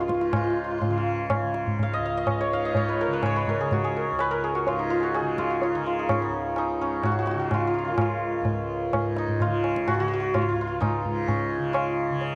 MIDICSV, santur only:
0, 0, Header, 1, 2, 480
1, 0, Start_track
1, 0, Tempo, 480000
1, 336, Time_signature, 4, 2, 24, 8
1, 6093, Tempo, 470958
1, 12470, End_track
2, 0, Start_track
2, 0, Title_t, "Santur"
2, 0, Program_c, 0, 15
2, 0, Note_on_c, 0, 61, 81
2, 0, Note_on_c, 0, 63, 86
2, 0, Note_on_c, 0, 68, 70
2, 0, Note_on_c, 0, 71, 76
2, 0, Note_on_c, 0, 73, 78
2, 6, Note_on_c, 0, 65, 77
2, 76, Note_off_c, 0, 65, 0
2, 80, Note_on_c, 0, 65, 74
2, 137, Note_off_c, 0, 65, 0
2, 141, Note_on_c, 0, 65, 66
2, 217, Note_off_c, 0, 65, 0
2, 220, Note_on_c, 0, 65, 58
2, 358, Note_off_c, 0, 65, 0
2, 362, Note_on_c, 0, 65, 80
2, 433, Note_off_c, 0, 65, 0
2, 437, Note_on_c, 0, 65, 54
2, 497, Note_off_c, 0, 65, 0
2, 501, Note_on_c, 0, 65, 65
2, 557, Note_off_c, 0, 65, 0
2, 561, Note_on_c, 0, 65, 52
2, 638, Note_off_c, 0, 65, 0
2, 642, Note_on_c, 0, 65, 60
2, 707, Note_off_c, 0, 65, 0
2, 711, Note_on_c, 0, 65, 56
2, 779, Note_off_c, 0, 65, 0
2, 783, Note_on_c, 0, 65, 57
2, 839, Note_off_c, 0, 65, 0
2, 839, Note_off_c, 0, 73, 0
2, 843, Note_on_c, 0, 65, 48
2, 897, Note_off_c, 0, 71, 0
2, 901, Note_off_c, 0, 65, 0
2, 905, Note_on_c, 0, 65, 63
2, 958, Note_off_c, 0, 68, 0
2, 972, Note_off_c, 0, 65, 0
2, 976, Note_on_c, 0, 65, 63
2, 1827, Note_on_c, 0, 77, 93
2, 1934, Note_on_c, 0, 75, 102
2, 2051, Note_off_c, 0, 77, 0
2, 2055, Note_on_c, 0, 77, 87
2, 2169, Note_off_c, 0, 75, 0
2, 2173, Note_on_c, 0, 75, 103
2, 2406, Note_on_c, 0, 73, 103
2, 2487, Note_off_c, 0, 63, 0
2, 2528, Note_off_c, 0, 77, 0
2, 2532, Note_on_c, 0, 77, 111
2, 2648, Note_off_c, 0, 75, 0
2, 2652, Note_on_c, 0, 75, 93
2, 2763, Note_off_c, 0, 73, 0
2, 2767, Note_on_c, 0, 73, 97
2, 2888, Note_on_c, 0, 71, 86
2, 3010, Note_on_c, 0, 70, 99
2, 3014, Note_off_c, 0, 61, 0
2, 3070, Note_off_c, 0, 71, 0
2, 3131, Note_on_c, 0, 71, 97
2, 3191, Note_off_c, 0, 70, 0
2, 3252, Note_off_c, 0, 73, 0
2, 3256, Note_on_c, 0, 73, 106
2, 3356, Note_off_c, 0, 71, 0
2, 3360, Note_on_c, 0, 71, 88
2, 3490, Note_on_c, 0, 70, 87
2, 3550, Note_off_c, 0, 71, 0
2, 3606, Note_on_c, 0, 68, 81
2, 3724, Note_on_c, 0, 66, 84
2, 3784, Note_off_c, 0, 65, 0
2, 3784, Note_off_c, 0, 77, 0
2, 3838, Note_off_c, 0, 68, 0
2, 3843, Note_on_c, 0, 68, 92
2, 3961, Note_off_c, 0, 70, 0
2, 3965, Note_on_c, 0, 70, 86
2, 4202, Note_on_c, 0, 71, 110
2, 4262, Note_off_c, 0, 70, 0
2, 4310, Note_on_c, 0, 70, 97
2, 4369, Note_off_c, 0, 71, 0
2, 4434, Note_off_c, 0, 68, 0
2, 4438, Note_on_c, 0, 68, 83
2, 4545, Note_off_c, 0, 66, 0
2, 4549, Note_on_c, 0, 66, 82
2, 4676, Note_on_c, 0, 65, 91
2, 4736, Note_off_c, 0, 66, 0
2, 4790, Note_on_c, 0, 63, 78
2, 4899, Note_off_c, 0, 65, 0
2, 4903, Note_on_c, 0, 65, 94
2, 4998, Note_off_c, 0, 68, 0
2, 5002, Note_on_c, 0, 68, 67
2, 5027, Note_off_c, 0, 75, 0
2, 5029, Note_on_c, 0, 66, 92
2, 5089, Note_off_c, 0, 65, 0
2, 5148, Note_off_c, 0, 68, 0
2, 5152, Note_on_c, 0, 68, 97
2, 5386, Note_on_c, 0, 65, 92
2, 5446, Note_off_c, 0, 66, 0
2, 5505, Note_on_c, 0, 66, 82
2, 5565, Note_off_c, 0, 65, 0
2, 5630, Note_on_c, 0, 65, 84
2, 5690, Note_off_c, 0, 66, 0
2, 5746, Note_off_c, 0, 63, 0
2, 5750, Note_on_c, 0, 63, 85
2, 5805, Note_off_c, 0, 73, 0
2, 5858, Note_off_c, 0, 65, 0
2, 5862, Note_on_c, 0, 65, 69
2, 5987, Note_off_c, 0, 63, 0
2, 5991, Note_on_c, 0, 63, 81
2, 6111, Note_on_c, 0, 61, 80
2, 6196, Note_off_c, 0, 61, 0
2, 6200, Note_on_c, 0, 61, 53
2, 6221, Note_on_c, 0, 59, 64
2, 6282, Note_off_c, 0, 70, 0
2, 6585, Note_off_c, 0, 63, 0
2, 6589, Note_on_c, 0, 63, 94
2, 6823, Note_off_c, 0, 61, 0
2, 6827, Note_on_c, 0, 61, 90
2, 7072, Note_on_c, 0, 66, 93
2, 7132, Note_off_c, 0, 66, 0
2, 7133, Note_off_c, 0, 65, 0
2, 7136, Note_on_c, 0, 66, 81
2, 7204, Note_off_c, 0, 66, 0
2, 7209, Note_on_c, 0, 66, 81
2, 7276, Note_off_c, 0, 66, 0
2, 7280, Note_on_c, 0, 66, 85
2, 7331, Note_off_c, 0, 66, 0
2, 7335, Note_on_c, 0, 66, 72
2, 7415, Note_off_c, 0, 66, 0
2, 7419, Note_on_c, 0, 66, 74
2, 7565, Note_on_c, 0, 65, 90
2, 7626, Note_off_c, 0, 66, 0
2, 7628, Note_off_c, 0, 65, 0
2, 7632, Note_on_c, 0, 65, 57
2, 7699, Note_off_c, 0, 65, 0
2, 7703, Note_on_c, 0, 65, 86
2, 7767, Note_off_c, 0, 65, 0
2, 7771, Note_on_c, 0, 65, 77
2, 7814, Note_off_c, 0, 65, 0
2, 7818, Note_on_c, 0, 65, 75
2, 7862, Note_on_c, 0, 54, 36
2, 7876, Note_off_c, 0, 65, 0
2, 7879, Note_on_c, 0, 56, 40
2, 7880, Note_on_c, 0, 65, 66
2, 7913, Note_on_c, 0, 58, 47
2, 7947, Note_off_c, 0, 59, 0
2, 7951, Note_on_c, 0, 59, 49
2, 7973, Note_off_c, 0, 61, 0
2, 7977, Note_on_c, 0, 61, 51
2, 8007, Note_off_c, 0, 63, 0
2, 8011, Note_on_c, 0, 63, 60
2, 8045, Note_off_c, 0, 65, 0
2, 8049, Note_on_c, 0, 65, 91
2, 8110, Note_off_c, 0, 54, 0
2, 8222, Note_off_c, 0, 68, 0
2, 9238, Note_off_c, 0, 63, 0
2, 9242, Note_on_c, 0, 63, 82
2, 9475, Note_off_c, 0, 65, 0
2, 9479, Note_on_c, 0, 65, 97
2, 9949, Note_on_c, 0, 66, 107
2, 10010, Note_off_c, 0, 56, 0
2, 10010, Note_off_c, 0, 65, 0
2, 10011, Note_off_c, 0, 66, 0
2, 10015, Note_on_c, 0, 66, 78
2, 10071, Note_off_c, 0, 66, 0
2, 10076, Note_on_c, 0, 66, 104
2, 10152, Note_off_c, 0, 66, 0
2, 10156, Note_on_c, 0, 66, 86
2, 10209, Note_off_c, 0, 66, 0
2, 10213, Note_on_c, 0, 66, 89
2, 10275, Note_off_c, 0, 66, 0
2, 10279, Note_on_c, 0, 66, 78
2, 10422, Note_on_c, 0, 65, 100
2, 10483, Note_off_c, 0, 66, 0
2, 10494, Note_off_c, 0, 65, 0
2, 10498, Note_on_c, 0, 65, 71
2, 10567, Note_off_c, 0, 65, 0
2, 10571, Note_on_c, 0, 65, 79
2, 10632, Note_off_c, 0, 65, 0
2, 10636, Note_on_c, 0, 65, 68
2, 10694, Note_off_c, 0, 65, 0
2, 10698, Note_on_c, 0, 65, 91
2, 10758, Note_off_c, 0, 65, 0
2, 10762, Note_on_c, 0, 65, 73
2, 10891, Note_off_c, 0, 63, 0
2, 10895, Note_on_c, 0, 63, 102
2, 11376, Note_off_c, 0, 61, 0
2, 11380, Note_on_c, 0, 61, 80
2, 11835, Note_off_c, 0, 65, 0
2, 11839, Note_on_c, 0, 65, 84
2, 12178, Note_off_c, 0, 59, 0
2, 12307, Note_off_c, 0, 58, 0
2, 12470, Note_off_c, 0, 61, 0
2, 12470, Note_off_c, 0, 63, 0
2, 12470, Note_off_c, 0, 65, 0
2, 12470, End_track
0, 0, End_of_file